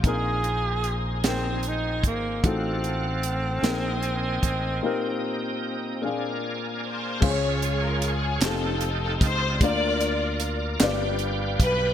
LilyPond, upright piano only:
<<
  \new Staff \with { instrumentName = "Upright piano" } { \time 6/8 \key bes \mixolydian \tempo 4. = 50 <c' ees' aes' bes'>4 r8 <c' ees' aes' bes'>4 r8 | <ees' f' ges' a'>4 r8 <c' ees' aes' bes'>4 r8 | <bes ees' g' bes'>4 r8 <bes d' f' aes'>4 r8 | <aes des' f' aes' c'' des''>4 r8 <c' ees' f' g' a'>4 r8 |
<bes d' f' bes' d''>4 r8 <d' f' g' b' d''>4 r8 | }
  \new Staff \with { instrumentName = "Upright piano" } { \clef bass \time 6/8 \key bes \mixolydian bes,4. r4. | a,4. bes4. | bes,4. bes,4. | des4. r4. |
d4. g,4. | }
>>